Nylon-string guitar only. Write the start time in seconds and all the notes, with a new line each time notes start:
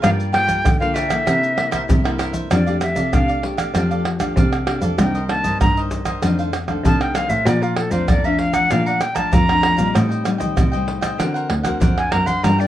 0.03 G3 A#3 F4 A4
0.34 A#3 F4 A4
0.66 D3
0.82 A#3 F4 A4
1.11 A#3 E4 A4
1.27 C3
1.57 A#3 E4 A4
1.89 G2
2.06 A#3 E4 A4
2.51 F3 A3 D4 G4
2.67 A3 D4 G4
2.81 A3 D4 G4
3.13 C3 A3 D4 G4
3.43 A3 D4 G4
3.74 F3 A3 D4 G4
4.19 A3 D4 G4
4.36 C3
4.66 A3 D4 G4
4.98 C3 D#3 A#3 D4
5.28 D#3 A#3 D4
5.60 G2 D#3 A#3 D4
6.22 F2 D#3 A3 D4
6.68 D#3 A3 D4
6.85 C3 D#3 A3 D4
7.15 D#3 A3 D4
7.46 A#2 F3 A3 D4
7.92 F3 A3 D4
8.09 F2
8.26 F3 A3 D4
8.71 A#2 F3 A3 D4
9.17 F3 A3 D4
9.34 F2
9.51 F3 A3 D4
9.79 G3 C4 D#4
9.97 A2
10.27 G3 C4 D#4
10.59 A2
10.74 G3 C4 D#4
11.21 D3 C4 F#4 A#4
11.66 C4 F#4 A#4
11.83 D3
12.13 C4 F#4 A#4
12.45 G3 D4 F4 A#4
12.61 D4 F4 A#4